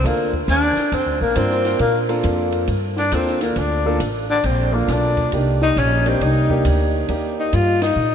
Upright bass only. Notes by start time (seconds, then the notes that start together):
0.04 D2
0.48 D#2
0.77 muted upright bass stroke
0.92 F2
1.06 D2
1.21 A#1
1.36 G2
1.80 A#2
2.24 F2
2.68 G2
3.12 D#2
3.56 D2
4.00 A1
4.44 A#1
4.88 B1
5.33 C2
5.77 A#1
6.21 C2
6.65 D2
7.09 D#2
7.53 G2
7.96 A#2